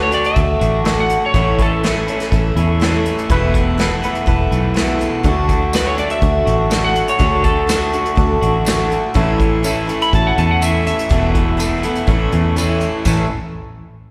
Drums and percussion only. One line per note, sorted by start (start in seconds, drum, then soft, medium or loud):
0.12 closed hi-hat medium
0.24 closed hi-hat medium
0.36 kick loud
0.36 closed hi-hat medium
0.61 closed hi-hat medium
0.85 snare loud
0.85 closed hi-hat medium
1.09 closed hi-hat medium
1.34 kick loud
1.34 closed hi-hat medium
1.59 kick medium
1.59 closed hi-hat medium
1.83 snare loud
1.83 closed hi-hat medium
2.08 closed hi-hat medium
2.20 snare soft
2.20 closed hi-hat medium
2.32 kick medium
2.32 closed hi-hat medium
2.56 closed hi-hat medium
2.81 snare loud
2.81 closed hi-hat medium
3.05 closed hi-hat medium
3.18 closed hi-hat medium
3.30 kick loud
3.30 closed hi-hat medium
3.54 kick medium
3.54 closed hi-hat medium
3.79 snare loud
3.79 closed hi-hat medium
4.03 closed hi-hat medium
4.15 closed hi-hat medium
4.27 kick loud
4.27 closed hi-hat medium
4.52 closed hi-hat medium
4.76 snare loud
4.76 closed hi-hat medium
5.00 closed hi-hat medium
5.24 kick loud
5.24 closed hi-hat medium
5.49 kick medium
5.49 closed hi-hat medium
5.73 snare loud
5.73 closed hi-hat medium
5.73 tambourine medium
5.98 closed hi-hat medium
6.10 closed hi-hat medium
6.22 kick loud
6.22 closed hi-hat medium
6.47 closed hi-hat medium
6.71 snare loud
6.71 closed hi-hat medium
6.71 tambourine medium
6.95 closed hi-hat medium
7.08 closed hi-hat medium
7.20 kick loud
7.20 closed hi-hat medium
7.44 kick medium
7.44 closed hi-hat medium
7.68 snare loud
7.68 closed hi-hat medium
7.68 tambourine medium
7.93 closed hi-hat medium
8.05 closed hi-hat medium
8.17 kick loud
8.17 closed hi-hat medium
8.42 closed hi-hat medium
8.66 snare loud
8.66 closed hi-hat medium
8.66 tambourine loud
8.91 closed hi-hat medium
9.15 kick loud
9.15 closed hi-hat medium
9.40 kick medium
9.40 closed hi-hat medium
9.64 closed hi-hat medium
9.64 tambourine loud
9.89 closed hi-hat medium
10.01 closed hi-hat medium
10.13 kick loud
10.13 closed hi-hat medium
10.38 closed hi-hat medium
10.62 closed hi-hat medium
10.62 tambourine loud
10.87 closed hi-hat medium
10.99 closed hi-hat medium
11.11 kick loud
11.11 closed hi-hat medium
11.35 kick medium
11.35 closed hi-hat medium
11.59 closed hi-hat medium
11.59 tambourine medium
11.83 closed hi-hat medium
11.95 closed hi-hat medium
12.07 kick loud
12.07 closed hi-hat medium
12.32 closed hi-hat medium
12.56 closed hi-hat medium
12.56 tambourine medium
12.81 closed hi-hat medium
13.05 kick loud
13.05 crash medium
13.05 tambourine medium